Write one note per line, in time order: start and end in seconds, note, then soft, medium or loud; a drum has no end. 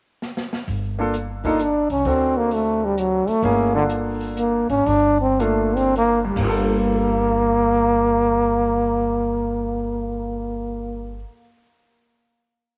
0.22 snare medium
0.37 snare medium
0.53 snare medium
0.68 1.86 G1 medium
0.68 kick soft
0.68 open hi-hat soft
0.99 1.12 A#3 medium
0.99 1.13 D4 medium
0.99 1.13 F4 medium
0.99 1.13 A4 medium
1.14 closed hi-hat medium
1.44 1.58 A#3 medium
1.44 1.58 D4 medium
1.44 1.63 D#4 medium
1.44 1.59 F4 medium
1.44 1.59 A4 medium
1.44 kick soft
1.44 open hi-hat soft
1.59 1.91 D4 medium
1.59 closed hi-hat soft
1.90 2.04 C2 medium
1.90 2.08 C#4 medium
1.90 open hi-hat soft
2.05 3.23 D2 medium
2.05 3.34 C4 soft
2.05 2.39 C4 medium
2.05 3.34 D4 soft
2.05 3.34 F#4 soft
2.05 3.35 A4 medium
2.05 kick soft
2.05 open hi-hat soft
2.37 2.55 A#3 medium
2.51 2.86 A3 medium
2.51 open hi-hat soft
2.85 3.01 G3 medium
2.98 3.30 F#3 medium
2.98 closed hi-hat medium
3.27 3.45 A3 medium
3.27 muted upright bass stroke soft
3.27 open hi-hat soft
3.43 4.65 G1 medium
3.43 3.70 A3 medium
3.43 3.74 A#3 loud
3.43 3.71 C#4 medium
3.43 3.71 E4 soft
3.43 3.71 G#4 medium
3.43 kick soft
3.43 open hi-hat soft
3.74 3.84 D3 medium
3.74 4.76 A#3 medium
3.74 4.76 D4 medium
3.74 4.77 F4 soft
3.74 4.77 A4 medium
3.89 closed hi-hat medium
4.21 open hi-hat soft
4.37 4.68 A#3 medium
4.37 closed hi-hat medium
4.69 4.85 G#1 medium
4.69 4.88 C#4 medium
4.69 open hi-hat soft
4.86 6.32 G1 medium
4.86 5.20 D4 loud
4.86 kick soft
4.86 open hi-hat soft
5.21 5.43 C4 medium
5.39 5.78 A3 medium
5.39 6.28 A#3 medium
5.39 6.28 D4 medium
5.39 6.28 F4 medium
5.39 6.29 A4 medium
5.39 closed hi-hat medium
5.76 5.95 C4 loud
5.76 open hi-hat soft
5.96 6.21 A#3 medium
5.96 open hi-hat soft
6.25 11.15 G2 medium
6.30 11.21 G3 medium
6.36 11.23 G1 medium
6.36 11.27 A#3 medium
6.36 11.23 A#3 medium
6.36 kick medium
6.36 crash medium
6.43 11.34 F4 medium
6.49 11.40 A4 medium